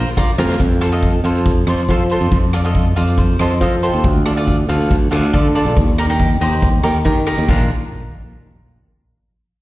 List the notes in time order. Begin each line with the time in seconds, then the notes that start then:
0.07 closed hi-hat
0.17 F4 A#4 D5, kick, cross-stick, closed hi-hat
0.38 F2 F4 A#4 F5, snare
0.49 snare
0.60 F2, kick, closed hi-hat
0.81 F4 A4 C5, cross-stick, closed hi-hat
0.92 F4 A4 D#5, closed hi-hat
1.02 kick, closed hi-hat
1.24 F2 F4 A4 C5, closed hi-hat
1.35 closed hi-hat
1.46 kick, closed hi-hat
1.67 F2 F4 A4 C5, cross-stick, closed hi-hat
1.78 closed hi-hat
1.88 F3 F4 A4 C5, kick, closed hi-hat
2.10 F4 A4 C5, closed hi-hat
2.21 F2, closed hi-hat
2.32 F2, kick, closed hi-hat
2.53 F4 A4 D5, cross-stick, closed hi-hat
2.64 F4 A4 D#5, closed hi-hat
2.75 kick, closed hi-hat
2.96 F2 F4 A4 C5 D5, closed hi-hat
3.07 closed hi-hat
3.18 C5, kick, closed hi-hat
3.39 F2 F4 A4 C5 D#5, cross-stick, closed hi-hat
3.50 closed hi-hat
3.61 F3 F4 A4 D#5 F5, kick, closed hi-hat
3.82 F4 A4 C5 G5, closed hi-hat
3.94 D#2, closed hi-hat
4.04 D2, kick, closed hi-hat
4.26 F4 A4 D5, cross-stick, closed hi-hat
4.37 F4 A4 D5, closed hi-hat
4.47 kick, closed hi-hat
4.69 D2 F4 A4 F5, closed hi-hat
4.80 closed hi-hat
4.91 kick, closed hi-hat
5.11 D2 F4 A4 D5, cross-stick, closed hi-hat
5.23 closed hi-hat
5.33 D3 F4 A4 D5, kick, closed hi-hat
5.55 F4 A4 D5, closed hi-hat
5.65 A#1, closed hi-hat
5.77 D#2, kick, closed hi-hat
5.99 D#4 G4 A#4, cross-stick, closed hi-hat
6.09 D#4 G4 A#4, closed hi-hat
6.20 kick, closed hi-hat
6.41 D#2 D#4 G4 C5, closed hi-hat
6.52 closed hi-hat
6.62 kick, closed hi-hat
6.84 D#2 D#4 G4 A#4, cross-stick, closed hi-hat
6.95 closed hi-hat
7.05 D#3 D#4 G4 A#4, kick, closed hi-hat
7.27 D#4 G4 A#4, cross-stick, closed hi-hat
7.38 D#2, closed hi-hat
7.48 A#1 D4 F4 A#4, kick, crash